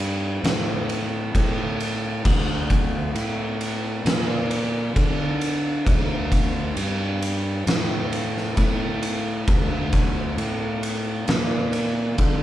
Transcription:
Already playing: G2
0.00 ride
0.43 A2, snare, ride
0.89 ride
1.35 A2, kick, ride
1.80 ride
2.25 D2, kick, crash
2.70 kick, ride
3.14 A2, ride
3.61 ride
4.05 A#2, snare, ride
4.51 ride
4.96 D3, kick, ride
5.41 ride
5.87 D2, kick, ride
6.32 kick, ride
6.76 G2, ride
7.22 ride
7.66 A2, snare, ride
8.13 ride
8.37 snare
8.57 A2, kick, ride
9.03 ride
9.48 D2, kick, ride
9.93 kick, ride
10.37 A2, ride
10.83 ride
11.28 A#2, snare, ride
11.73 ride
12.18 D3, kick, ride

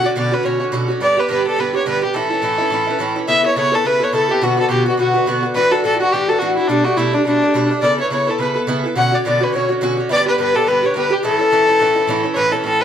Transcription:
0.04 D3 C#4 F#4 D5
0.16 B2 D3 C#4 F#4 D5
0.31 D3 C#4 F#4 B4
0.43 B2 D3 C#4 F#4 C#5
0.60 D3 C#4 F#4
0.72 B2 D3 C#4 F#4
0.88 D3 C#4 F#4
1.00 G2 D3 B3 G4 D5
1.17 D3 B3 G4 B4
1.29 G2 D3 B3 G4 B4
1.45 D3 B3 G4 A4
1.56 G2 D3 B3 B4
1.60 G4
1.73 D3 B3 G4 C#5
1.86 G2 D3 B3 G4 B4
2.02 D3 B3 G4
2.13 A2 E3 C#4 E4 A4
2.30 E3 C#4 E4
2.42 A2 E3 C#4 E4
2.58 E3 C#4 E4
2.70 A2 E3 C#4 E4
2.87 E3 C#4 E4
2.99 A2 E3 C#4 E4
3.16 E3 C#4 E4
3.27 C#3 B3 E4 A4 E5
3.43 B3 E4 A4 C#5
3.56 C#3 B3 E4 A4 C#5
3.72 B3 E4 A4
3.84 C#3 B3 E4 A4 B4
4.00 B3 E4 A4 C#5
4.13 C#3 B3 E4 A4
4.29 B3 E4 G4 A4
4.41 B2 D3 B3 F#4
4.57 D3 B3 F#4 A4
4.69 B2 D3 B3 F#4 G4
4.86 D3 B3 F#4
4.97 B2 D3 B3 F#4
5.14 D3 B3 F#4
5.26 B2 D3 B3 F#4
5.43 D3 B3 F#4
5.54 A2 E3 D4 F#4 B4
5.71 E3 D4 F#4 A4
5.83 A2 E3 D4 F#4 A4
5.95 E4 F#4
6.00 E3 D4 F#4
6.11 A2 E3 D4 G4
6.16 F#4
6.28 E3 D4 F#4 A4
6.38 A2 E3 D4 F#4
6.43 F#4
6.56 D4 E4 F#4
6.61 E3
6.67 B2 G3 A3 D4
6.84 A3 D4 F#4
6.88 G3
6.97 B2 G3 A3 D4 E4
7.13 G3 A3 D4
7.25 B2 G3 A3 D4
7.42 G3 A3 D4
7.54 B2 G3 A3 D4
7.71 G3 A3 D4
7.82 C#3 B3 E4 A4 D5
7.98 B3 E4 A4 C#5
8.10 C#3 B3 E4 A4 C#5
8.27 B3 E4 A4
8.39 C#3 B3 E4 A4 B4
8.55 B3 E4 A4
8.67 C#3 B3 E4 A4
8.84 B3 E4 A4
8.96 B2 D3 C#4 F#4 F#5
9.12 D3 C#4 F#4 D5
9.25 B2 D3 C#4 F#4 D5
9.41 D3 C#4 F#4 B4
9.52 B2 D3 C#4 F#4 C#5
9.69 D3 C#4 F#4
9.81 B2 D3 C#4 F#4
9.97 D3 C#4 F#4
10.09 G2 D3 B3 G4 D5 E5
10.13 D5
10.26 D3 B3 G4 B4
10.38 G2 D3 B3 G4 B4
10.54 D3 B3 G4 A4
10.67 G2 D3 B3 G4 B4
10.83 D3 B3 G4 C#5
10.94 G2 D3 B3 G4 B4
11.10 D3 B3 G4
11.23 A2 E3 C#4 E4 G#4 A4
11.34 A4
11.39 E3 C#4 E4
11.51 A2 E3 C#4 E4
11.67 E3 C#4 E4
11.78 A2 E3 C#4 E4
11.96 E3 C#4 E4
12.07 A2 E3 C#4 E4
12.23 E3 C#4 E4
12.34 A2 E3 C#4 B4 C#5
12.38 E4
12.52 E3 C#4 E4 A4
12.64 A2 E3 C#4 E4 A4
12.80 E4 B4

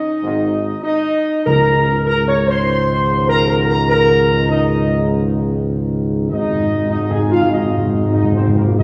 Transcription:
Already playing: D#4 D#5
0.23 G#1 G#2 D#3
0.83 D#4 D#5
1.46 C#2 G#2 C#3 D#3 A#4 A#5
2.07 A#4 A#5
2.28 C#5 C#6
2.48 C5 C6
3.29 A#4 A#5
3.49 A#4 A#5
3.69 A#4 A#5
3.90 A#4 A#5
4.49 D#4 D#5
6.30 G#1 G#2 D#3 D#4 D#5
6.38 G#2
6.45 G#2
6.53 G#2
6.60 G#2
6.66 G#2
6.74 G#2
6.81 G#2
6.88 G#2 D#4 D#5
6.96 G#2
7.03 G#2
7.11 G#2 G#4 G#5
7.17 G#2
7.26 G#2
7.31 G#2 F4 F5
7.41 G#2
7.49 G#2 D#4
7.53 G#2 D#5
7.63 G#2
7.70 G#2
7.77 G#2
7.85 G#2
7.92 G#2
8.00 G#2
8.08 G#2
8.14 G#2 D#4 D#5
8.23 G#2
8.31 G#2 C4
8.36 G#2 C5
8.47 G#2
8.55 G#2 A#3 A#4
8.64 G#2
8.71 G#2
8.79 G#2 D#4 D#5

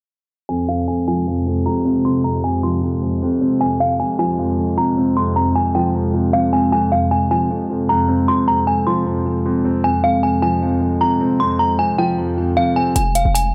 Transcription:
0.49 F2 C3 G#3 G#5
0.69 F2 F5
0.88 F2 G#5
1.07 F3 G#5
1.27 F2
1.46 F2
1.66 F2 A#5
1.85 C4
2.05 F2 C6
2.24 F2 A#5
2.44 F2 G#5
2.63 F3 C6
2.82 F2
3.02 F2
3.22 F2
3.41 C4
3.61 F2 C3 G#5
3.80 F2 F5
4.00 F2 G#5
4.19 F3 G#5
4.39 F2
4.58 F2
4.77 F2 A#5
4.97 C4
5.17 F2 C6
5.36 F2 A#5
5.55 F2 G#5
5.75 F3 G5
5.95 F2
6.14 F2
6.33 F2 F5
6.53 C4 G#5
6.72 F2 G#5
6.92 F2 F5
7.11 F2 G#5
7.31 F3 G#5
7.50 F2
7.70 F2
7.89 F2 A#5
8.08 C4
8.28 F2 C6
8.48 F2 A#5
8.67 F2 G#5
8.87 F3 C6
9.06 F2
9.26 F2
9.46 F2
9.65 C4
9.84 F2 G#3 G#5
10.04 F2 F5
10.23 F2 G#5
10.42 F3 G#5
10.62 F2
10.81 F2
11.01 F2 A#5
11.21 C4
11.40 F2 C6
11.59 F2 A#5
11.79 F2 G#5
11.98 F3 G5
12.18 F2
12.38 F2
12.57 F2 F5
12.76 C4 G#5
12.96 F1 G#5, closed hi-hat
13.15 F5, closed hi-hat
13.25 F1
13.35 G#5, closed hi-hat

